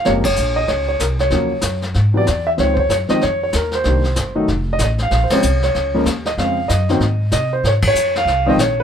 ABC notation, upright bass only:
X:1
M:4/4
L:1/8
Q:"Swing" 1/4=190
K:Bbm
V:1 name="Upright bass" clef=bass
G,,,2 B,,,2 D,,2 C,,2 | E,,2 G,,2 A,,2 =E,,2 | D,,2 G,, z F,,2 E,,2 | C,,2 =G,,,2 F,,,2 =A,,,2 |
B,,, z C,,2 D,,2 E,,2 | F,,2 G,,2 A,,2 C,2 | [K:Db] A,,2 F,,2 C,,2 B,,,2 |]